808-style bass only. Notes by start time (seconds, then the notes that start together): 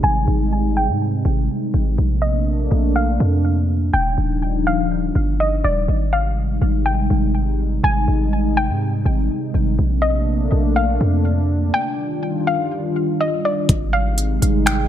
0.03 G#1
0.28 G#1
0.89 G#2
1.25 G#1
1.74 G#1
1.98 A#1
2.71 A#1
3.20 F2
3.93 D#1
4.18 D#1
5.15 G1
5.64 D#1
5.88 G#1
6.62 G#1
7.10 G#1
7.84 G#1
8.08 G#1
8.69 G#2
9.05 G#1
9.54 G#1
9.79 A#1
10.52 A#1
11.01 F2
13.69 G#1
14.42 G#1